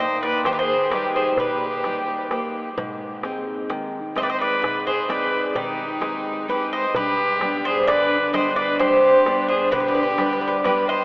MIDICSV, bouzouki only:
0, 0, Header, 1, 2, 480
1, 0, Start_track
1, 0, Tempo, 927357
1, 1436, Time_signature, 9, 3, 24, 8
1, 5717, End_track
2, 0, Start_track
2, 0, Title_t, "Bouzouki"
2, 0, Program_c, 0, 25
2, 0, Note_on_c, 0, 75, 97
2, 115, Note_off_c, 0, 75, 0
2, 117, Note_on_c, 0, 74, 85
2, 235, Note_off_c, 0, 74, 0
2, 237, Note_on_c, 0, 72, 93
2, 269, Note_off_c, 0, 72, 0
2, 273, Note_on_c, 0, 71, 73
2, 303, Note_off_c, 0, 71, 0
2, 305, Note_on_c, 0, 72, 88
2, 461, Note_off_c, 0, 72, 0
2, 473, Note_on_c, 0, 71, 75
2, 585, Note_off_c, 0, 71, 0
2, 600, Note_on_c, 0, 72, 73
2, 720, Note_off_c, 0, 72, 0
2, 723, Note_on_c, 0, 71, 76
2, 1239, Note_off_c, 0, 71, 0
2, 2162, Note_on_c, 0, 75, 92
2, 2187, Note_off_c, 0, 75, 0
2, 2189, Note_on_c, 0, 74, 80
2, 2218, Note_off_c, 0, 74, 0
2, 2223, Note_on_c, 0, 75, 88
2, 2276, Note_off_c, 0, 75, 0
2, 2284, Note_on_c, 0, 74, 86
2, 2518, Note_off_c, 0, 74, 0
2, 2520, Note_on_c, 0, 72, 83
2, 2637, Note_off_c, 0, 72, 0
2, 2639, Note_on_c, 0, 74, 86
2, 2876, Note_on_c, 0, 67, 72
2, 2886, Note_off_c, 0, 74, 0
2, 3362, Note_on_c, 0, 71, 80
2, 3396, Note_off_c, 0, 67, 0
2, 3471, Note_off_c, 0, 71, 0
2, 3482, Note_on_c, 0, 75, 87
2, 3591, Note_off_c, 0, 75, 0
2, 3603, Note_on_c, 0, 71, 92
2, 3939, Note_off_c, 0, 71, 0
2, 3960, Note_on_c, 0, 72, 91
2, 4070, Note_off_c, 0, 72, 0
2, 4075, Note_on_c, 0, 74, 102
2, 4314, Note_off_c, 0, 74, 0
2, 4316, Note_on_c, 0, 75, 98
2, 4427, Note_off_c, 0, 75, 0
2, 4431, Note_on_c, 0, 74, 96
2, 4549, Note_off_c, 0, 74, 0
2, 4551, Note_on_c, 0, 72, 95
2, 4891, Note_off_c, 0, 72, 0
2, 4909, Note_on_c, 0, 72, 83
2, 5022, Note_off_c, 0, 72, 0
2, 5030, Note_on_c, 0, 71, 98
2, 5067, Note_off_c, 0, 71, 0
2, 5073, Note_on_c, 0, 71, 65
2, 5109, Note_off_c, 0, 71, 0
2, 5115, Note_on_c, 0, 71, 72
2, 5142, Note_off_c, 0, 71, 0
2, 5148, Note_on_c, 0, 71, 57
2, 5185, Note_off_c, 0, 71, 0
2, 5192, Note_on_c, 0, 71, 66
2, 5224, Note_off_c, 0, 71, 0
2, 5230, Note_on_c, 0, 71, 55
2, 5262, Note_off_c, 0, 71, 0
2, 5269, Note_on_c, 0, 71, 65
2, 5304, Note_off_c, 0, 71, 0
2, 5310, Note_on_c, 0, 71, 56
2, 5339, Note_off_c, 0, 71, 0
2, 5345, Note_on_c, 0, 71, 63
2, 5382, Note_off_c, 0, 71, 0
2, 5389, Note_on_c, 0, 71, 63
2, 5416, Note_off_c, 0, 71, 0
2, 5423, Note_on_c, 0, 71, 73
2, 5462, Note_off_c, 0, 71, 0
2, 5513, Note_on_c, 0, 71, 97
2, 5623, Note_off_c, 0, 71, 0
2, 5636, Note_on_c, 0, 75, 94
2, 5717, Note_off_c, 0, 75, 0
2, 5717, End_track
0, 0, End_of_file